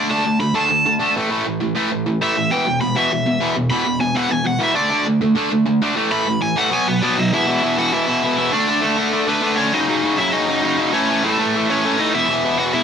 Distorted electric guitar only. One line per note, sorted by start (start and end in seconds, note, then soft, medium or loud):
0.10 0.23 D3 loud
0.10 0.24 A3 loud
0.10 0.24 D4 loud
0.24 0.38 D3 medium
0.24 0.38 A3 medium
0.40 0.53 D3 medium
0.40 0.54 A3 medium
0.54 0.68 D3 medium
0.54 0.69 A3 medium
0.54 0.69 D4 loud
0.69 0.83 D3 medium
0.69 0.84 A3 medium
0.85 0.98 D3 medium
0.85 0.99 A3 medium
0.99 1.14 D3 medium
0.99 1.14 A3 loud
0.99 1.15 D4 loud
1.16 1.29 A2 medium
1.16 1.30 E3 medium
1.16 1.30 A3 medium
1.31 1.45 A2 medium
1.31 1.45 E3 loud
1.31 1.45 A3 medium
1.46 1.59 A2 medium
1.46 1.60 E3 medium
1.60 1.74 A2 medium
1.60 1.74 E3 medium
1.75 1.90 A2 loud
1.75 1.90 E3 loud
1.75 1.90 A3 loud
1.91 2.05 A2 medium
1.91 2.05 E3 medium
2.06 2.20 A2 medium
2.06 2.20 E3 medium
2.21 2.35 A2 medium
2.21 2.35 E3 medium
2.21 2.35 A3 loud
2.36 2.50 A2 medium
2.36 2.50 E3 medium
2.51 2.65 E2 loud
2.51 2.65 B2 medium
2.51 2.66 E3 loud
2.66 2.80 E2 medium
2.66 2.80 B2 medium
2.81 2.94 E2 medium
2.81 2.95 B2 medium
2.95 3.10 E2 medium
2.95 3.10 B2 loud
2.95 3.11 E3 loud
3.12 3.25 E2 medium
3.12 3.25 B2 medium
3.26 3.39 E2 medium
3.26 3.39 B2 medium
3.40 3.55 E2 medium
3.40 3.55 B2 medium
3.40 3.55 E3 loud
3.56 3.70 E2 medium
3.56 3.70 B2 medium
3.71 3.84 E2 medium
3.71 3.85 B2 loud
3.71 3.86 E3 loud
3.85 3.99 E2 medium
3.85 4.00 B2 medium
4.00 4.14 E2 medium
4.00 4.14 B2 medium
4.15 4.29 E2 loud
4.15 4.29 B2 medium
4.15 4.31 E3 loud
4.30 4.44 E2 medium
4.30 4.44 B2 medium
4.45 4.58 E2 medium
4.45 4.59 B2 medium
4.59 4.75 E2 medium
4.59 4.74 B2 medium
4.59 4.75 E3 medium
4.74 4.89 D3 medium
4.74 4.90 A3 loud
4.74 4.90 D4 medium
4.90 5.05 D3 loud
4.90 5.05 A3 loud
4.90 5.06 D4 loud
5.06 5.20 D3 medium
5.06 5.20 A3 medium
5.21 5.34 D3 medium
5.21 5.35 A3 medium
5.35 5.49 D3 medium
5.35 5.50 A3 loud
5.35 5.51 D4 loud
5.50 5.64 D3 medium
5.50 5.65 A3 medium
5.66 5.80 D3 medium
5.66 5.80 A3 medium
5.82 5.95 D3 medium
5.82 5.95 A3 medium
5.82 5.96 D4 loud
5.96 6.09 A2 medium
5.96 6.10 E3 medium
5.96 6.10 A3 loud
6.10 6.25 A2 loud
6.10 6.26 E3 loud
6.10 6.26 A3 loud
6.26 6.40 A2 medium
6.26 6.40 E3 medium
6.41 6.55 A2 medium
6.41 6.55 E3 medium
6.56 6.71 A2 loud
6.56 6.71 E3 loud
6.56 6.71 A3 loud
6.71 6.86 B2 medium
6.71 6.86 F#3 medium
6.71 6.86 B3 loud
6.88 7.01 B2 medium
6.88 7.02 F#3 medium
7.02 7.17 B2 medium
7.02 7.17 F#3 loud
7.02 7.17 B3 medium
7.19 7.32 B2 medium
7.19 7.32 F#3 medium
7.33 7.47 E2 loud
7.33 7.47 B2 loud
7.33 7.46 E3 loud
7.47 7.61 E2 medium
7.47 7.63 B2 medium
7.47 7.62 E3 loud
7.63 7.78 E2 medium
7.63 7.77 B2 loud
7.63 7.77 E3 loud
7.78 7.92 E2 medium
7.78 7.92 B2 medium
7.78 7.93 E3 loud
7.93 8.08 E2 medium
7.93 8.08 B2 medium
7.93 8.07 E3 loud
8.09 8.23 E2 medium
8.09 8.23 B2 medium
8.09 8.24 E3 loud
8.24 8.38 E2 loud
8.24 8.38 B2 loud
8.24 8.37 E3 loud
8.38 8.53 E2 medium
8.38 8.53 B2 medium
8.38 8.52 E3 loud
8.53 8.68 D3 loud
8.53 8.68 A3 loud
8.53 8.67 D4 loud
8.69 8.82 D3 medium
8.69 8.83 A3 medium
8.69 8.83 D4 loud
8.84 8.97 D3 medium
8.84 8.96 A3 medium
8.84 8.96 D4 loud
8.97 9.12 D3 medium
8.97 9.12 A3 loud
8.97 9.12 D4 loud
9.13 9.27 D3 medium
9.13 9.27 A3 medium
9.13 9.26 D4 loud
9.28 9.41 D3 medium
9.28 9.41 A3 loud
9.28 9.42 D4 loud
9.42 9.58 D3 loud
9.42 9.58 A3 loud
9.42 9.57 D4 loud
9.58 9.73 D3 medium
9.58 9.73 A3 medium
9.58 9.72 D4 medium
9.73 9.88 F#2 loud
9.73 9.87 C#3 loud
9.73 9.87 F#3 loud
9.88 10.02 F#2 medium
9.88 10.03 C#3 loud
9.88 10.03 F#3 loud
10.03 10.19 F#2 medium
10.03 10.19 C#3 loud
10.03 10.18 F#3 loud
10.19 10.32 F#2 loud
10.19 10.32 C#3 loud
10.19 10.33 F#3 loud
10.33 10.48 F#2 medium
10.33 10.48 C#3 medium
10.33 10.47 F#3 loud
10.48 10.61 F#2 medium
10.48 10.62 C#3 medium
10.48 10.63 F#3 medium
10.62 10.78 F#2 loud
10.62 10.78 C#3 loud
10.62 10.77 F#3 loud
10.78 10.93 F#2 medium
10.78 10.93 C#3 medium
10.78 10.92 F#3 loud
10.93 11.09 A2 loud
10.93 11.09 E3 loud
10.93 11.08 A3 loud
11.09 11.22 A2 medium
11.09 11.24 E3 loud
11.09 11.23 A3 medium
11.23 11.38 A2 medium
11.23 11.38 E3 loud
11.23 11.37 A3 loud
11.38 11.54 A2 medium
11.38 11.54 E3 medium
11.38 11.55 A3 loud
11.55 11.69 A2 medium
11.55 11.69 E3 loud
11.55 11.68 A3 loud
11.70 11.84 A2 medium
11.70 11.83 E3 medium
11.70 11.84 A3 loud
11.85 11.99 A2 medium
11.85 11.99 E3 loud
11.85 11.99 A3 loud
12.00 12.14 A2 medium
12.00 12.13 E3 medium
12.00 12.13 A3 medium
12.14 12.29 E2 loud
12.14 12.28 B2 loud
12.14 12.28 E3 loud
12.29 12.44 E2 medium
12.29 12.44 B2 loud
12.29 12.44 E3 loud
12.45 12.58 E2 medium
12.45 12.58 B2 loud
12.45 12.58 E3 loud
12.59 12.73 E2 loud
12.59 12.73 B2 loud
12.59 12.73 E3 loud
12.74 12.83 E2 medium
12.74 12.83 B2 loud
12.74 12.83 E3 medium